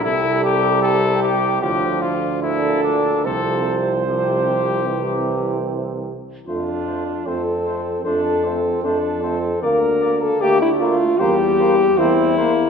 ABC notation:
X:1
M:4/4
L:1/16
Q:1/4=76
K:F
V:1 name="Trumpet"
E2 G2 A2 G2 G2 F2 E2 D2 | A2 z2 G8 z4 | c2 c2 c2 c2 c2 c2 c2 c2 | d2 d2 d2 d2 c2 c2 c2 c2 |]
V:2 name="French horn"
G,8 F,6 z2 | F,4 F,4 E,6 z2 | F4 A4 A4 A4 | B3 A G E F2 G4 E4 |]
V:3 name="Flugelhorn"
A4 G4 F2 z2 A4 | c12- c2 z2 | D4 C4 D2 C2 D2 C2 | B,4 A,4 G,4 C2 B,2 |]
V:4 name="Euphonium"
C,8 A,,2 z2 B,,4 | C,4 C,4 C,6 z2 | A,2 A,2 A,2 A,2 A,2 A,2 A,2 A,2 | B,2 B,2 B,2 B,2 B,2 B,2 B,2 B,2 |]
V:5 name="Tuba" clef=bass
C,,8 D,,8 | C,,12- C,,2 z2 | F,,4 F,,4 F,,4 F,,4 | D,,4 D,,4 E,,4 E,,4 |]